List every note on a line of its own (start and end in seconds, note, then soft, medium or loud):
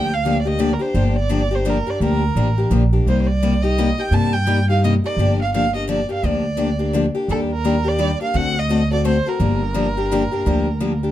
0.00 0.74 D2 medium
0.00 0.10 D3 medium
0.00 0.11 F3 medium
0.00 0.11 A#3 medium
0.00 0.11 D4 medium
0.00 0.11 G4 medium
0.00 0.15 G5 loud
0.14 0.41 F5 loud
0.25 0.36 D3 medium
0.25 0.36 F3 medium
0.25 0.36 A#3 medium
0.25 0.36 D4 medium
0.25 0.37 G4 medium
0.41 0.49 D5 medium
0.45 0.59 A#3 soft
0.45 0.58 D4 medium
0.45 0.58 G4 medium
0.45 0.62 D#5 medium
0.59 0.70 D3 medium
0.59 0.71 F3 medium
0.59 0.71 A#3 medium
0.59 0.71 D4 loud
0.59 0.71 G4 medium
0.59 0.75 D5 medium
0.73 0.83 A#4 medium
0.79 0.94 A#3 soft
0.79 0.93 D4 medium
0.79 0.94 G4 medium
0.79 1.17 C5 medium
0.94 1.79 G1 medium
0.94 1.16 D3 medium
0.94 1.16 F3 medium
0.94 1.16 A#3 medium
0.94 1.16 D4 medium
0.94 1.16 G4 medium
1.18 1.56 D5 medium
1.29 1.41 D3 medium
1.29 1.41 F3 medium
1.29 1.41 A#3 medium
1.29 1.41 D4 medium
1.29 1.42 G4 medium
1.51 1.64 A#3 soft
1.51 1.64 D4 soft
1.51 1.65 G4 medium
1.51 1.71 C5 medium
1.65 1.76 D3 medium
1.65 1.76 F3 medium
1.65 1.77 A#3 medium
1.65 1.77 D4 medium
1.65 1.77 G4 medium
1.69 1.92 A#4 medium
1.87 2.01 A#3 soft
1.87 2.01 D4 soft
1.87 2.00 G4 soft
1.87 2.03 D5 medium
2.00 2.29 D2 medium
2.00 2.22 D3 medium
2.00 2.22 F3 medium
2.00 2.22 A#3 medium
2.00 2.22 D4 medium
2.00 2.22 G4 medium
2.00 2.69 A#4 medium
2.35 2.66 A1 medium
2.35 2.47 D3 medium
2.35 2.47 F3 medium
2.35 2.47 A#3 medium
2.35 2.48 D4 medium
2.35 2.48 G4 medium
2.58 2.70 A#3 soft
2.58 2.70 D4 soft
2.58 2.71 G4 medium
2.70 3.01 A#1 medium
2.70 2.82 D3 medium
2.70 2.82 F3 medium
2.70 2.82 A#3 medium
2.70 2.82 D4 medium
2.70 2.83 G4 medium
2.93 3.07 A#3 soft
2.93 3.06 D4 soft
2.93 3.06 G4 medium
3.06 3.91 C2 medium
3.06 3.27 C3 medium
3.06 3.27 G3 medium
3.06 3.28 A#3 medium
3.06 3.28 D#4 medium
3.06 3.28 G4 medium
3.06 3.19 C5 medium
3.21 3.28 C5 medium
3.27 3.64 D5 medium
3.43 3.53 C3 medium
3.43 3.53 G3 medium
3.43 3.53 A#3 medium
3.43 3.53 D#4 medium
3.43 3.53 G4 medium
3.62 3.77 A#3 soft
3.62 3.77 D#4 medium
3.62 3.77 G4 medium
3.62 4.01 D#5 medium
3.78 3.88 C3 medium
3.78 3.88 G3 medium
3.78 3.89 A#3 medium
3.78 3.89 D#4 medium
3.78 3.89 G4 loud
3.98 4.12 A#3 soft
3.98 4.12 D#4 soft
3.98 4.12 G4 medium
3.98 4.15 G5 medium
4.11 4.96 G2 medium
4.11 4.33 C3 medium
4.11 4.33 G3 medium
4.11 4.33 A#3 medium
4.11 4.33 D#4 medium
4.11 4.33 G4 medium
4.11 4.34 A5 loud
4.33 4.68 G5 loud
4.47 4.58 C3 medium
4.47 4.58 G3 medium
4.47 4.58 A#3 medium
4.47 4.58 D#4 medium
4.47 4.58 G4 medium
4.69 4.83 A#3 soft
4.69 4.83 D#4 medium
4.69 4.83 G4 medium
4.69 4.83 F5 medium
4.84 4.94 C3 medium
4.84 4.94 G3 medium
4.84 4.94 A#3 medium
4.84 4.95 D#4 loud
4.84 4.95 G4 loud
4.84 4.93 D#5 medium
5.04 5.18 A#3 soft
5.04 5.18 D#4 soft
5.04 5.18 G4 medium
5.04 5.38 D5 medium
5.17 6.02 G1 medium
5.17 5.39 D3 medium
5.17 5.39 F3 medium
5.17 5.39 A#3 medium
5.17 5.39 D4 medium
5.17 5.39 G4 medium
5.42 5.54 F5 medium
5.54 5.65 D3 medium
5.54 5.65 F3 medium
5.54 5.65 A#3 medium
5.54 5.65 D4 medium
5.54 5.65 G4 medium
5.54 5.74 F5 loud
5.74 5.88 A#3 soft
5.74 5.87 D4 medium
5.74 5.88 G4 medium
5.74 5.88 D#5 medium
5.88 5.99 D3 medium
5.88 5.99 F3 medium
5.88 5.99 A#3 medium
5.88 5.99 D4 medium
5.88 6.00 G4 medium
5.88 6.09 D5 medium
6.09 6.23 A#3 soft
6.09 6.23 D4 soft
6.09 6.23 G4 medium
6.13 6.28 F5 medium
6.23 7.08 D2 medium
6.23 6.44 D3 medium
6.23 6.44 F3 medium
6.23 6.44 A#3 medium
6.23 6.44 D4 medium
6.23 6.44 G4 medium
6.23 6.95 D5 medium
6.57 6.69 D3 medium
6.57 6.69 F3 medium
6.57 6.69 A#3 medium
6.57 6.69 D4 medium
6.57 6.69 G4 medium
6.79 6.93 A#3 soft
6.79 6.93 D4 medium
6.79 6.93 G4 medium
6.93 7.04 D3 medium
6.93 7.05 F3 medium
6.93 7.05 A#3 medium
6.93 7.05 D4 medium
6.93 7.05 G4 medium
7.15 7.29 A#3 soft
7.15 7.29 D4 soft
7.15 7.28 G4 medium
7.28 8.13 D#2 medium
7.28 7.50 D#3 medium
7.28 7.50 G3 medium
7.28 7.50 A#3 medium
7.28 7.50 D4 medium
7.28 7.50 G4 medium
7.28 7.40 A4 medium
7.53 7.90 A#4 medium
7.64 7.75 D#3 medium
7.64 7.75 G3 medium
7.64 7.75 A#3 medium
7.64 7.76 D4 medium
7.64 7.76 G4 medium
7.84 7.98 A#3 soft
7.84 7.98 D4 soft
7.84 7.98 G4 medium
7.84 8.22 D5 loud
7.98 8.10 D#3 medium
7.98 8.10 G3 medium
7.98 8.10 A#3 medium
7.98 8.10 D4 medium
7.98 8.10 G4 medium
8.21 8.34 A#3 soft
8.21 8.34 D4 medium
8.21 8.34 G4 medium
8.21 8.38 F5 medium
8.34 9.19 D2 medium
8.34 8.55 D3 medium
8.34 8.55 A3 medium
8.34 8.55 C4 medium
8.34 8.55 F#4 medium
8.34 8.55 A4 medium
8.34 8.60 F#5 loud
8.59 8.92 D#5 loud
8.69 8.80 D3 medium
8.69 8.81 A3 medium
8.69 8.81 C4 medium
8.69 8.81 F#4 medium
8.69 8.81 A4 medium
8.91 9.04 C4 soft
8.91 9.04 F#4 medium
8.91 9.04 A4 medium
8.91 9.05 D5 medium
9.05 9.16 D3 medium
9.05 9.16 A3 medium
9.05 9.16 C4 medium
9.05 9.16 F#4 loud
9.05 9.16 A4 medium
9.05 9.30 C5 medium
9.26 9.39 C4 soft
9.26 9.40 F#4 soft
9.26 9.40 A4 medium
9.26 11.12 A#4 medium
9.40 10.25 G1 medium
9.40 9.60 D3 medium
9.40 9.61 F3 medium
9.40 9.61 A#3 medium
9.40 9.61 D4 medium
9.40 9.61 G4 medium
9.74 9.86 D3 medium
9.74 9.86 F3 medium
9.74 9.86 A#3 medium
9.74 9.86 D4 medium
9.74 9.86 G4 medium
9.97 10.11 A#3 soft
9.97 10.11 D4 soft
9.97 10.11 G4 medium
10.12 10.22 D3 medium
10.12 10.22 F3 medium
10.12 10.22 A#3 loud
10.12 10.22 D4 loud
10.12 10.22 G4 loud
10.32 10.46 A#3 soft
10.32 10.45 D4 soft
10.32 10.45 G4 medium
10.46 11.12 D2 medium
10.46 10.66 D3 medium
10.46 10.66 F3 medium
10.46 10.67 A#3 medium
10.46 10.67 D4 medium
10.46 10.67 G4 medium
10.80 10.92 D3 medium
10.80 10.92 F3 medium
10.80 10.92 A#3 medium
10.80 10.92 D4 medium
10.80 10.92 G4 medium
11.03 11.12 A#3 soft
11.03 11.12 D4 medium
11.03 11.12 G4 medium